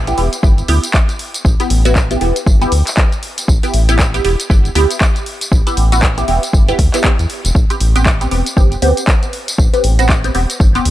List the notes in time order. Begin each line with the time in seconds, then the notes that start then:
Already playing: A1
0.07 B3 E4 G4, closed hi-hat, tambourine
0.18 E1 B3 E4 G4, open hi-hat
0.33 closed hi-hat, tambourine
0.43 G1 B3 E4 G4, kick, tambourine
0.58 closed hi-hat, tambourine
0.68 D2 B3 E4 G4, open hi-hat
0.84 closed hi-hat, tambourine
0.94 kick, clap, tambourine
1.09 closed hi-hat, tambourine
1.19 open hi-hat
1.34 closed hi-hat, tambourine
1.45 A1, kick, tambourine
1.60 B3 E4 G4, closed hi-hat, tambourine
1.70 A1, open hi-hat
1.85 B3 E4 F#4, closed hi-hat, tambourine
1.96 kick, clap, tambourine
2.11 B3 E4 G4, closed hi-hat, tambourine
2.21 E1 B3 E4 G4, open hi-hat
2.36 closed hi-hat, tambourine
2.47 G1, kick, tambourine
2.62 B3 E4 G4, closed hi-hat, tambourine
2.72 D2, open hi-hat
2.87 clap, closed hi-hat, tambourine
2.97 kick, clap, tambourine
3.12 closed hi-hat, tambourine
3.23 open hi-hat
3.38 closed hi-hat, tambourine
3.48 A1, kick, tambourine
3.63 B3 E4 G4, closed hi-hat, tambourine
3.74 A1, open hi-hat
3.89 B3 E4 G4, closed hi-hat, tambourine
3.99 kick, clap, tambourine
4.14 B3 E4 G4, closed hi-hat, tambourine
4.25 E1 B3 E4 G4, open hi-hat
4.40 closed hi-hat, tambourine
4.50 G1 B3 E4 G4, kick, tambourine
4.65 closed hi-hat, tambourine
4.75 D2 B3 E4 G4, open hi-hat
4.91 closed hi-hat, tambourine
5.01 kick, clap, tambourine
5.16 closed hi-hat, tambourine
5.26 open hi-hat
5.41 closed hi-hat, tambourine
5.52 A1, kick, tambourine
5.67 B3 E4 G4, closed hi-hat, tambourine
5.77 A1, open hi-hat
5.92 B3 E4 F#4, closed hi-hat, tambourine
6.03 kick, clap, tambourine
6.18 B3 E4 G4, closed hi-hat, tambourine
6.28 E1 B3 E4 G4, open hi-hat
6.43 closed hi-hat, tambourine
6.53 G1, kick, tambourine
6.68 B3 E4 G4, closed hi-hat, tambourine
6.79 D2, kick, open hi-hat
6.94 B3 E4 G4, clap, closed hi-hat, tambourine
7.04 B3 E4 G4, kick, clap, tambourine
7.19 E2, closed hi-hat, tambourine
7.30 open hi-hat
7.45 E1, closed hi-hat, tambourine
7.55 A1, kick, tambourine
7.70 B3 C4 G4, closed hi-hat, tambourine
7.80 A1, open hi-hat
7.96 B3 C4 G4, closed hi-hat, tambourine
8.06 kick, clap, tambourine
8.21 B3 C4 G4, closed hi-hat, tambourine
8.31 E1 B3 C4 G4, open hi-hat
8.46 closed hi-hat, tambourine
8.57 G1 B3 C4 G4, kick, tambourine
8.72 closed hi-hat, tambourine
8.82 D2 B3 C4 G4, open hi-hat
8.97 closed hi-hat, tambourine
9.08 kick, clap, tambourine
9.23 closed hi-hat, tambourine
9.33 open hi-hat
9.48 closed hi-hat, tambourine
9.58 A1, kick, tambourine
9.73 B3 C4 G4, closed hi-hat, tambourine
9.84 A1, open hi-hat
9.99 B3 C4 F#4, closed hi-hat, tambourine
10.09 kick, clap, tambourine
10.24 B3 C4 G4, closed hi-hat, tambourine
10.35 E1 B3 C4 G4, open hi-hat
10.50 closed hi-hat, tambourine
10.60 G1, kick, tambourine
10.75 B3 C4 G4, closed hi-hat, tambourine
10.85 D2, open hi-hat